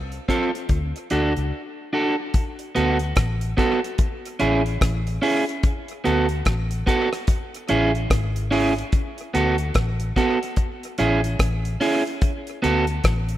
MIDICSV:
0, 0, Header, 1, 4, 480
1, 0, Start_track
1, 0, Tempo, 823045
1, 1366, Time_signature, 4, 2, 24, 8
1, 7801, End_track
2, 0, Start_track
2, 0, Title_t, "Clean electric guitar"
2, 0, Program_c, 0, 27
2, 166, Note_on_c, 0, 60, 94
2, 172, Note_on_c, 0, 65, 91
2, 174, Note_on_c, 0, 69, 101
2, 290, Note_off_c, 0, 60, 0
2, 292, Note_off_c, 0, 65, 0
2, 293, Note_off_c, 0, 69, 0
2, 646, Note_on_c, 0, 62, 78
2, 650, Note_on_c, 0, 66, 83
2, 654, Note_on_c, 0, 69, 88
2, 770, Note_off_c, 0, 62, 0
2, 772, Note_off_c, 0, 66, 0
2, 773, Note_off_c, 0, 69, 0
2, 1125, Note_on_c, 0, 62, 84
2, 1129, Note_on_c, 0, 66, 81
2, 1135, Note_on_c, 0, 69, 96
2, 1249, Note_off_c, 0, 62, 0
2, 1251, Note_off_c, 0, 66, 0
2, 1254, Note_off_c, 0, 69, 0
2, 1604, Note_on_c, 0, 59, 96
2, 1609, Note_on_c, 0, 66, 90
2, 1613, Note_on_c, 0, 69, 96
2, 1729, Note_off_c, 0, 59, 0
2, 1731, Note_off_c, 0, 66, 0
2, 1733, Note_off_c, 0, 69, 0
2, 2083, Note_on_c, 0, 59, 90
2, 2088, Note_on_c, 0, 66, 98
2, 2091, Note_on_c, 0, 69, 108
2, 2208, Note_off_c, 0, 59, 0
2, 2211, Note_off_c, 0, 66, 0
2, 2212, Note_off_c, 0, 69, 0
2, 2563, Note_on_c, 0, 61, 91
2, 2567, Note_on_c, 0, 64, 100
2, 2571, Note_on_c, 0, 68, 99
2, 2688, Note_off_c, 0, 61, 0
2, 2690, Note_off_c, 0, 64, 0
2, 2692, Note_off_c, 0, 68, 0
2, 3043, Note_on_c, 0, 61, 84
2, 3048, Note_on_c, 0, 64, 84
2, 3051, Note_on_c, 0, 68, 97
2, 3168, Note_off_c, 0, 61, 0
2, 3170, Note_off_c, 0, 64, 0
2, 3172, Note_off_c, 0, 68, 0
2, 3525, Note_on_c, 0, 59, 84
2, 3529, Note_on_c, 0, 66, 95
2, 3532, Note_on_c, 0, 69, 99
2, 3649, Note_off_c, 0, 59, 0
2, 3651, Note_off_c, 0, 66, 0
2, 3652, Note_off_c, 0, 69, 0
2, 4004, Note_on_c, 0, 59, 77
2, 4009, Note_on_c, 0, 66, 100
2, 4012, Note_on_c, 0, 69, 95
2, 4128, Note_off_c, 0, 59, 0
2, 4131, Note_off_c, 0, 66, 0
2, 4132, Note_off_c, 0, 69, 0
2, 4485, Note_on_c, 0, 61, 89
2, 4488, Note_on_c, 0, 64, 104
2, 4493, Note_on_c, 0, 68, 110
2, 4609, Note_off_c, 0, 61, 0
2, 4610, Note_off_c, 0, 64, 0
2, 4613, Note_off_c, 0, 68, 0
2, 4962, Note_on_c, 0, 61, 92
2, 4967, Note_on_c, 0, 64, 106
2, 4970, Note_on_c, 0, 68, 104
2, 5087, Note_off_c, 0, 61, 0
2, 5089, Note_off_c, 0, 64, 0
2, 5091, Note_off_c, 0, 68, 0
2, 5446, Note_on_c, 0, 59, 82
2, 5451, Note_on_c, 0, 66, 101
2, 5454, Note_on_c, 0, 69, 91
2, 5569, Note_off_c, 0, 59, 0
2, 5571, Note_off_c, 0, 66, 0
2, 5573, Note_off_c, 0, 69, 0
2, 5928, Note_on_c, 0, 59, 91
2, 5931, Note_on_c, 0, 66, 85
2, 5935, Note_on_c, 0, 69, 97
2, 6050, Note_off_c, 0, 59, 0
2, 6051, Note_off_c, 0, 66, 0
2, 6053, Note_off_c, 0, 69, 0
2, 6407, Note_on_c, 0, 61, 84
2, 6410, Note_on_c, 0, 64, 89
2, 6412, Note_on_c, 0, 68, 107
2, 6529, Note_off_c, 0, 61, 0
2, 6531, Note_off_c, 0, 64, 0
2, 6532, Note_off_c, 0, 68, 0
2, 6885, Note_on_c, 0, 61, 100
2, 6890, Note_on_c, 0, 64, 105
2, 6893, Note_on_c, 0, 68, 103
2, 7008, Note_off_c, 0, 61, 0
2, 7011, Note_off_c, 0, 64, 0
2, 7012, Note_off_c, 0, 68, 0
2, 7362, Note_on_c, 0, 59, 92
2, 7368, Note_on_c, 0, 66, 86
2, 7370, Note_on_c, 0, 69, 100
2, 7487, Note_off_c, 0, 59, 0
2, 7489, Note_off_c, 0, 66, 0
2, 7491, Note_off_c, 0, 69, 0
2, 7801, End_track
3, 0, Start_track
3, 0, Title_t, "Fingered electric bass"
3, 0, Program_c, 1, 33
3, 0, Note_on_c, 1, 36, 85
3, 106, Note_off_c, 1, 36, 0
3, 409, Note_on_c, 1, 38, 87
3, 535, Note_off_c, 1, 38, 0
3, 654, Note_on_c, 1, 38, 82
3, 778, Note_off_c, 1, 38, 0
3, 800, Note_on_c, 1, 37, 88
3, 878, Note_off_c, 1, 37, 0
3, 1616, Note_on_c, 1, 38, 89
3, 1819, Note_off_c, 1, 38, 0
3, 1852, Note_on_c, 1, 33, 92
3, 2057, Note_off_c, 1, 33, 0
3, 2575, Note_on_c, 1, 33, 98
3, 2778, Note_off_c, 1, 33, 0
3, 2812, Note_on_c, 1, 33, 98
3, 3017, Note_off_c, 1, 33, 0
3, 3538, Note_on_c, 1, 38, 94
3, 3740, Note_off_c, 1, 38, 0
3, 3773, Note_on_c, 1, 33, 101
3, 3977, Note_off_c, 1, 33, 0
3, 4496, Note_on_c, 1, 33, 89
3, 4699, Note_off_c, 1, 33, 0
3, 4730, Note_on_c, 1, 32, 108
3, 5143, Note_off_c, 1, 32, 0
3, 5454, Note_on_c, 1, 38, 98
3, 5658, Note_off_c, 1, 38, 0
3, 5692, Note_on_c, 1, 33, 95
3, 5896, Note_off_c, 1, 33, 0
3, 6416, Note_on_c, 1, 33, 109
3, 6619, Note_off_c, 1, 33, 0
3, 6650, Note_on_c, 1, 33, 102
3, 6855, Note_off_c, 1, 33, 0
3, 7375, Note_on_c, 1, 38, 92
3, 7578, Note_off_c, 1, 38, 0
3, 7611, Note_on_c, 1, 33, 98
3, 7801, Note_off_c, 1, 33, 0
3, 7801, End_track
4, 0, Start_track
4, 0, Title_t, "Drums"
4, 69, Note_on_c, 9, 42, 52
4, 127, Note_off_c, 9, 42, 0
4, 167, Note_on_c, 9, 36, 78
4, 174, Note_on_c, 9, 42, 64
4, 225, Note_off_c, 9, 36, 0
4, 232, Note_off_c, 9, 42, 0
4, 321, Note_on_c, 9, 42, 57
4, 380, Note_off_c, 9, 42, 0
4, 402, Note_on_c, 9, 42, 84
4, 405, Note_on_c, 9, 36, 111
4, 460, Note_off_c, 9, 42, 0
4, 463, Note_off_c, 9, 36, 0
4, 559, Note_on_c, 9, 42, 56
4, 617, Note_off_c, 9, 42, 0
4, 643, Note_on_c, 9, 42, 84
4, 701, Note_off_c, 9, 42, 0
4, 796, Note_on_c, 9, 42, 52
4, 855, Note_off_c, 9, 42, 0
4, 1364, Note_on_c, 9, 42, 85
4, 1366, Note_on_c, 9, 36, 127
4, 1422, Note_off_c, 9, 42, 0
4, 1424, Note_off_c, 9, 36, 0
4, 1510, Note_on_c, 9, 42, 55
4, 1568, Note_off_c, 9, 42, 0
4, 1608, Note_on_c, 9, 42, 79
4, 1666, Note_off_c, 9, 42, 0
4, 1746, Note_on_c, 9, 42, 61
4, 1805, Note_off_c, 9, 42, 0
4, 1841, Note_on_c, 9, 42, 83
4, 1846, Note_on_c, 9, 36, 123
4, 1848, Note_on_c, 9, 37, 117
4, 1899, Note_off_c, 9, 42, 0
4, 1905, Note_off_c, 9, 36, 0
4, 1906, Note_off_c, 9, 37, 0
4, 1990, Note_on_c, 9, 42, 57
4, 2048, Note_off_c, 9, 42, 0
4, 2088, Note_on_c, 9, 36, 93
4, 2095, Note_on_c, 9, 42, 71
4, 2146, Note_off_c, 9, 36, 0
4, 2153, Note_off_c, 9, 42, 0
4, 2242, Note_on_c, 9, 42, 62
4, 2300, Note_off_c, 9, 42, 0
4, 2323, Note_on_c, 9, 42, 89
4, 2326, Note_on_c, 9, 36, 121
4, 2381, Note_off_c, 9, 42, 0
4, 2384, Note_off_c, 9, 36, 0
4, 2482, Note_on_c, 9, 42, 64
4, 2540, Note_off_c, 9, 42, 0
4, 2564, Note_on_c, 9, 42, 84
4, 2622, Note_off_c, 9, 42, 0
4, 2717, Note_on_c, 9, 42, 54
4, 2775, Note_off_c, 9, 42, 0
4, 2807, Note_on_c, 9, 36, 114
4, 2811, Note_on_c, 9, 37, 116
4, 2812, Note_on_c, 9, 42, 95
4, 2865, Note_off_c, 9, 36, 0
4, 2869, Note_off_c, 9, 37, 0
4, 2871, Note_off_c, 9, 42, 0
4, 2956, Note_on_c, 9, 42, 61
4, 3014, Note_off_c, 9, 42, 0
4, 3049, Note_on_c, 9, 46, 85
4, 3107, Note_off_c, 9, 46, 0
4, 3202, Note_on_c, 9, 42, 59
4, 3260, Note_off_c, 9, 42, 0
4, 3285, Note_on_c, 9, 42, 87
4, 3287, Note_on_c, 9, 36, 127
4, 3343, Note_off_c, 9, 42, 0
4, 3345, Note_off_c, 9, 36, 0
4, 3432, Note_on_c, 9, 42, 54
4, 3490, Note_off_c, 9, 42, 0
4, 3530, Note_on_c, 9, 42, 82
4, 3589, Note_off_c, 9, 42, 0
4, 3667, Note_on_c, 9, 42, 57
4, 3725, Note_off_c, 9, 42, 0
4, 3764, Note_on_c, 9, 42, 82
4, 3768, Note_on_c, 9, 36, 103
4, 3771, Note_on_c, 9, 37, 114
4, 3822, Note_off_c, 9, 42, 0
4, 3826, Note_off_c, 9, 36, 0
4, 3829, Note_off_c, 9, 37, 0
4, 3912, Note_on_c, 9, 42, 61
4, 3970, Note_off_c, 9, 42, 0
4, 4008, Note_on_c, 9, 36, 97
4, 4015, Note_on_c, 9, 42, 69
4, 4066, Note_off_c, 9, 36, 0
4, 4073, Note_off_c, 9, 42, 0
4, 4156, Note_on_c, 9, 37, 73
4, 4161, Note_on_c, 9, 42, 58
4, 4214, Note_off_c, 9, 37, 0
4, 4219, Note_off_c, 9, 42, 0
4, 4242, Note_on_c, 9, 42, 95
4, 4245, Note_on_c, 9, 36, 127
4, 4300, Note_off_c, 9, 42, 0
4, 4304, Note_off_c, 9, 36, 0
4, 4400, Note_on_c, 9, 42, 61
4, 4458, Note_off_c, 9, 42, 0
4, 4482, Note_on_c, 9, 42, 85
4, 4540, Note_off_c, 9, 42, 0
4, 4636, Note_on_c, 9, 42, 53
4, 4695, Note_off_c, 9, 42, 0
4, 4726, Note_on_c, 9, 36, 98
4, 4729, Note_on_c, 9, 37, 122
4, 4730, Note_on_c, 9, 42, 85
4, 4784, Note_off_c, 9, 36, 0
4, 4787, Note_off_c, 9, 37, 0
4, 4789, Note_off_c, 9, 42, 0
4, 4875, Note_on_c, 9, 42, 65
4, 4934, Note_off_c, 9, 42, 0
4, 4970, Note_on_c, 9, 46, 81
4, 5028, Note_off_c, 9, 46, 0
4, 5123, Note_on_c, 9, 42, 60
4, 5182, Note_off_c, 9, 42, 0
4, 5205, Note_on_c, 9, 42, 91
4, 5207, Note_on_c, 9, 36, 123
4, 5263, Note_off_c, 9, 42, 0
4, 5265, Note_off_c, 9, 36, 0
4, 5353, Note_on_c, 9, 42, 54
4, 5411, Note_off_c, 9, 42, 0
4, 5451, Note_on_c, 9, 42, 85
4, 5510, Note_off_c, 9, 42, 0
4, 5588, Note_on_c, 9, 42, 63
4, 5646, Note_off_c, 9, 42, 0
4, 5682, Note_on_c, 9, 42, 83
4, 5687, Note_on_c, 9, 36, 118
4, 5690, Note_on_c, 9, 37, 127
4, 5741, Note_off_c, 9, 42, 0
4, 5745, Note_off_c, 9, 36, 0
4, 5748, Note_off_c, 9, 37, 0
4, 5830, Note_on_c, 9, 42, 63
4, 5889, Note_off_c, 9, 42, 0
4, 5927, Note_on_c, 9, 36, 91
4, 5934, Note_on_c, 9, 42, 70
4, 5985, Note_off_c, 9, 36, 0
4, 5992, Note_off_c, 9, 42, 0
4, 6081, Note_on_c, 9, 42, 63
4, 6140, Note_off_c, 9, 42, 0
4, 6161, Note_on_c, 9, 42, 85
4, 6165, Note_on_c, 9, 36, 112
4, 6219, Note_off_c, 9, 42, 0
4, 6223, Note_off_c, 9, 36, 0
4, 6318, Note_on_c, 9, 42, 57
4, 6376, Note_off_c, 9, 42, 0
4, 6403, Note_on_c, 9, 42, 86
4, 6461, Note_off_c, 9, 42, 0
4, 6555, Note_on_c, 9, 42, 60
4, 6613, Note_off_c, 9, 42, 0
4, 6645, Note_on_c, 9, 36, 108
4, 6648, Note_on_c, 9, 37, 115
4, 6649, Note_on_c, 9, 42, 92
4, 6703, Note_off_c, 9, 36, 0
4, 6706, Note_off_c, 9, 37, 0
4, 6708, Note_off_c, 9, 42, 0
4, 6795, Note_on_c, 9, 42, 60
4, 6853, Note_off_c, 9, 42, 0
4, 6888, Note_on_c, 9, 46, 90
4, 6946, Note_off_c, 9, 46, 0
4, 7041, Note_on_c, 9, 42, 60
4, 7099, Note_off_c, 9, 42, 0
4, 7124, Note_on_c, 9, 42, 86
4, 7126, Note_on_c, 9, 36, 127
4, 7182, Note_off_c, 9, 42, 0
4, 7184, Note_off_c, 9, 36, 0
4, 7272, Note_on_c, 9, 42, 58
4, 7331, Note_off_c, 9, 42, 0
4, 7371, Note_on_c, 9, 42, 87
4, 7429, Note_off_c, 9, 42, 0
4, 7507, Note_on_c, 9, 42, 53
4, 7565, Note_off_c, 9, 42, 0
4, 7603, Note_on_c, 9, 42, 84
4, 7606, Note_on_c, 9, 36, 111
4, 7610, Note_on_c, 9, 37, 118
4, 7661, Note_off_c, 9, 42, 0
4, 7665, Note_off_c, 9, 36, 0
4, 7668, Note_off_c, 9, 37, 0
4, 7748, Note_on_c, 9, 42, 58
4, 7801, Note_off_c, 9, 42, 0
4, 7801, End_track
0, 0, End_of_file